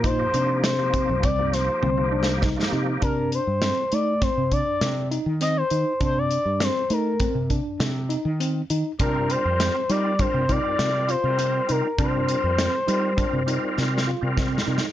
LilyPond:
<<
  \new Staff \with { instrumentName = "Analog synth lead" } { \time 5/4 \key c \minor \tempo 4 = 100 c''4 c''4 d''8 c''2 r8 | bes'8 c''4 d''8 c''8 d''4 r8 ees''16 c''8. | c''16 d''8. c''8 bes'4 r2 r8 | bes'8 c''4 d''8 c''8 d''4 c''4 bes'8 |
c''1 r4 | }
  \new Staff \with { instrumentName = "Tine electric piano" } { \time 5/4 \key c \minor ees'8 d'4 c'8 c'4 c'8 d'8 ees'8 ees'8 | d'4 c'8 ees'8 c'8 d'4 ees'8 c'8 ees'8 | d'4 c'8 ees'8 c'8 d'4 ees'8 c'8 ees'8 | d'4 c'8 ees'8 d'8 ees'4 f'8 c'8 ees'8 |
d'4 c'8 ees'8 d'8 ees'4 f'8 c'8 ees'8 | }
  \new Staff \with { instrumentName = "Tonewheel organ" } { \time 5/4 \key c \minor r16 <f bes ees' g'>8. r16 <f bes ees' g'>8. r16 <f bes ees' g'>8. r16 <f bes ees' g'>8. r16 <f bes ees' g'>8. | r1 r4 | r1 r4 | <g c' f' bes'>4~ <g c' f' bes'>16 r16 <g c' f' bes'>8 <g c' f' bes'>8 <g c' f' bes'>4 r16 <g c' f' bes'>4 r16 |
<g c' f' bes'>4~ <g c' f' bes'>16 r16 <g c' f' bes'>8 <g c' f' bes'>8 <g c' f' bes'>4 r16 <g c' f' bes'>4 r16 | }
  \new Staff \with { instrumentName = "Fretless electric bass" } { \clef bass \time 5/4 \key c \minor bes,8 c4~ c16 c,4~ c,16 c,4. c8 | c8. g,8 r16 a8. c8 r16 c8. ees8. ees16 r16 | c8. g,8 r16 a8. c8 r16 c8. ees8. ees16 r16 | c8. f,8 r16 g8. c8 r16 c8. c8. c16 r16 |
c8. f,8 r16 g8. c8 r16 c8. c8. c16 r16 | }
  \new DrumStaff \with { instrumentName = "Drums" } \drummode { \time 5/4 <hh bd>8 hh8 <hh sn>8 <hh bd>8 <hh bd>8 <hh sn>8 \tuplet 3/2 { tommh8 r8 sn8 <bd sn>8 sn8 r8 } | <hh bd>8 hh8 <hh sn>8 hh8 <hh bd sn>8 <hh bd>8 <hh sn>8 hh8 <hh sn>8 hh8 | <hh bd>8 hh8 <hh sn>8 hh8 <hh bd>8 <hh bd>8 <hh sn>8 hh8 hh8 hh8 | <hh bd>8 hh8 <hh sn>8 hh8 <hh bd>8 <hh bd>8 <hh sn>8 hh8 hh8 hh8 |
<hh bd>8 hh8 <hh sn>8 hh8 <hh bd>8 hh8 \tuplet 3/2 { sn8 sn8 r8 <bd sn>8 sn8 sn8 } | }
>>